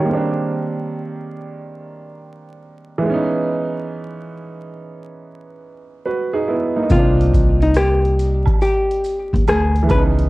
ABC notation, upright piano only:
X:1
M:4/4
L:1/16
Q:"Swing 16ths" 1/4=70
K:Cm
V:1 name="Upright piano"
[A_d] z12 z3 | z12 [^F_c] [EA] [_C_F] [B,E]- | [B,E] z12 z3 |]
V:2 name="Upright piano"
[E,G,B,CD]12- [E,G,B,CD]2 [_F,A,_C_DE]2- | [_F,A,_C_DE]12- [F,A,CDE]2 z2 | [B,CDE]12- [B,CDE]2 [_F,A,_C_DE]2 |]